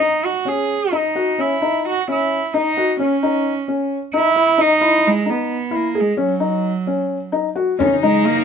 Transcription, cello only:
Already playing: D#4
0.25 F#4
0.48 G#4
0.95 D#4
1.40 E4
1.88 F#4
2.12 E4
2.57 D#4
3.02 C#4
4.15 E4
4.61 D#4
5.07 G#3
5.30 B3
5.75 A#3
6.00 G#3
6.22 F#3
8.03 G#3
8.25 A#3

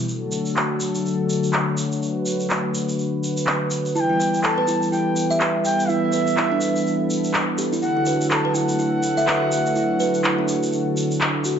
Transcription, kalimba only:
3.95 E4
4.09 E4
4.19 B4
4.44 A4
4.58 B4
4.68 E4
4.92 E4
5.30 E5
5.41 B4
5.89 E4
6.13 B4
6.37 E4
6.52 D4
7.58 G4
7.73 E4
7.83 E4
7.97 E4
8.07 B4
8.31 A4
8.45 B4
8.55 E4
8.79 E4
9.17 E5
9.27 B4
9.76 E4
10.00 B4
10.24 E4
10.39 D4
11.45 F#4

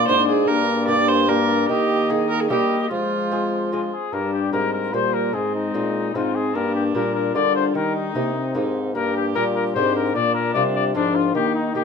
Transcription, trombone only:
Already playing: A#3
0.48 A#3
1.28 A#3
1.69 A#3
2.51 A#3
2.91 G#3
4.14 G3
4.94 G3
5.34 G#3
6.15 C4
6.54 A#3
6.95 G3
7.35 G3
8.15 A#3
8.35 C4
8.96 A#3
9.36 G3
9.77 C4
10.17 A#3
10.56 G3
10.95 F3
11.36 A#3
11.76 A#3

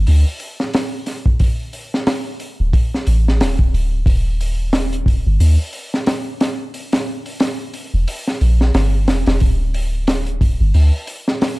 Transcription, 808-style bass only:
0.08 D2
2.60 D1
3.07 A1
3.40 D1
3.73 D1
4.06 D#1
5.27 G1
5.40 D#2
7.94 E1
8.41 A#1
8.75 G1
9.08 E1
9.27 E1
9.42 D1
10.61 G1
10.74 D2

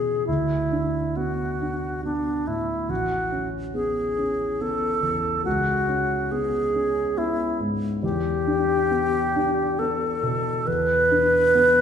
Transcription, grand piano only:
Already playing: E2 B2 B3 C#4
0.28 D2
0.72 D4
1.17 B3
1.61 D4
2.05 B3
2.48 A2
2.89 A1
3.32 C#4
3.74 B3
4.18 C#4
4.61 B3
5.02 E2
5.45 C#2
5.88 C#4
6.32 B3
6.75 C#4
7.17 B3
7.60 G#2
8.03 E2
8.47 D4
8.91 B3
9.36 D4
9.79 B3
10.23 B2
10.67 E2
11.11 D4
11.55 B3

